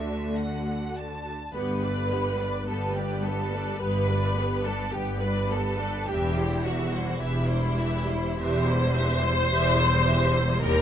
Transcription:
Already playing: D2 D3 A3 D4 F#4 E5
0.36 F#5
0.96 A5
1.53 G1 G2 B3 G4 B4
1.82 G3 B4 D5
2.11 B3 G4 B4
2.38 G3 B4 D5
2.67 G1 G2 B3 G4 A4 B4
2.95 G3 G4 B4 D5
3.23 B3 G4 A4 B4
3.52 G3 B4 D5
3.80 G1 G2 B3 G4 B4
4.09 G3 B4 D5
4.36 B3 G4 B4
4.65 G3 A4 B4 D5
4.92 G1 G2 B3 G4 B4
5.20 G3 B4 D5
5.49 B3 G4 A4 B4
5.78 G3 B4 D5
6.06 E1 E2 E3 G4 E5
6.35 G3 E4 C5
6.63 E3 F#4 G4 E5
6.92 G3 E4 C5
7.18 E1 E2 E3 E4 G4 E5
7.48 G3 E4 C5
7.77 E3 G4 E5
8.08 G3 E4 C5
8.37 E1 E2 E3 G4 C5 E5
8.67 G3 E4 C5
8.95 E3 G4 E5
9.23 G3 E4 C5
9.50 E1 E2 E3 G4 E5
9.79 G3 E4 C5
10.06 E3 G4 E5
10.34 G3 E4 C5
10.60 D#2 G3 G4 A#4 D#5

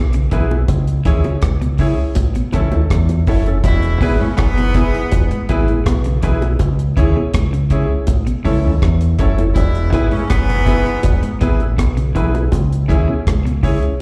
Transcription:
Already playing: B1
0.13 C#3, closed hi-hat
0.31 B1 E3 B3 E4 G#4 B4, kick, closed hi-hat, low bongo
0.51 B3 E4 G#4, high bongo
0.68 C#2, kick, closed hi-hat, high bongo
0.87 closed hi-hat
1.05 D#2 E3 C#4 E4 G#4 C#5, kick, closed hi-hat
1.24 C#3 C#4 E4 G#4, closed hi-hat, high bongo
1.42 C#2, kick, cross-stick, closed hi-hat
1.62 B2, closed hi-hat
1.78 C#3 C#4 E4 G#4 C#5, kick, open hi-hat
2.15 A1, kick, closed hi-hat, high bongo
2.35 B2, closed hi-hat
2.52 C#2 E3 C#4 E4 A4 C#5, kick, closed hi-hat, high bongo
2.72 D#2 C#4 E4 A4 C#5, closed hi-hat, high bongo
2.90 E2, kick, cross-stick, closed hi-hat
3.09 closed hi-hat, high bongo
3.27 F#1 C#4 E4 A4 C#5, kick, open hi-hat, low bongo
3.46 C#4 E4 A4, closed hi-hat, high bongo
3.64 E1 B2 G#3 E4, kick, closed hi-hat, high bongo
3.82 closed hi-hat
4.01 G#1 B2 B3 E4 G#4 B4, kick, open hi-hat
4.20 G#2 C#3 A3 B3 C#4 E4 G#4
4.37 F#1 G#2 E3 B3, kick, cross-stick, closed hi-hat
4.58 B2, closed hi-hat
4.74 B2 B3 E4 G#4 B4, kick, cross-stick, closed hi-hat
4.94 closed hi-hat
5.12 E1, kick, closed hi-hat, high bongo
5.31 G#2, closed hi-hat
5.49 G#1 B2 B3 E4 G#4 B4, kick, closed hi-hat
5.68 A1 B3 E4 G#4 B4, closed hi-hat
5.86 B1 B2, kick, cross-stick, closed hi-hat
6.04 C#3, closed hi-hat
6.22 B1 E3 B3 E4 G#4 B4, kick, closed hi-hat, low bongo
6.42 B3 E4 G#4, closed hi-hat, high bongo
6.59 C#2, kick, closed hi-hat, high bongo
6.79 closed hi-hat
6.96 D#2 C#3 C#4 E4 G#4 C#5, kick, closed hi-hat
7.16 B2 C#4 E4 G#4
7.34 C#2, kick, cross-stick, closed hi-hat
7.53 C#3, closed hi-hat
7.70 C#3 C#4 E4 G#4 C#5, kick, closed hi-hat
8.07 A1, kick, closed hi-hat, high bongo
8.27 B2, closed hi-hat
8.44 C#2 C#3 C#4 E4 A4 C#5, kick, open hi-hat
8.64 D#2 C#4 E4 A4 C#5
8.82 E2, kick, cross-stick, closed hi-hat
9.01 closed hi-hat
9.19 F#1 C#4 E4 A4 C#5, kick, closed hi-hat, low bongo
9.38 C#4 E4 A4, closed hi-hat, high bongo
9.55 E1 B2 G#3 E4, kick, closed hi-hat, high bongo
9.75 closed hi-hat
9.92 G#1 B2 B3 E4 G#4 B4, kick, closed hi-hat
10.11 G#2 C#3 A3 B3 C#4 E4 G#4, closed hi-hat
10.30 F#1 G#2 E3 B3, kick, cross-stick, closed hi-hat
10.49 B2, closed hi-hat
10.66 B2 B3 E4 G#4 B4, kick, cross-stick, closed hi-hat
10.86 closed hi-hat
11.03 E1, kick, closed hi-hat, high bongo
11.23 G#2, closed hi-hat
11.41 G#1 B2 B3 E4 G#4 B4, kick, closed hi-hat
11.60 A1 B3 E4 G#4 B4, closed hi-hat
11.78 B1 B2, kick, cross-stick, closed hi-hat
11.97 C#3, closed hi-hat
12.15 B1 E3 B3 E4 G#4 B4, kick, closed hi-hat, low bongo
12.35 B3 E4 G#4, closed hi-hat, high bongo
12.52 C#2, kick, closed hi-hat, high bongo
12.72 closed hi-hat
12.88 D#2 C#3 C#4 E4 G#4 C#5, kick, closed hi-hat
13.08 B2 C#4 E4 G#4
13.27 C#2, kick, cross-stick, closed hi-hat
13.45 B2, closed hi-hat
13.63 C#3 C#4 E4 G#4 C#5, kick, open hi-hat
13.83 closed hi-hat

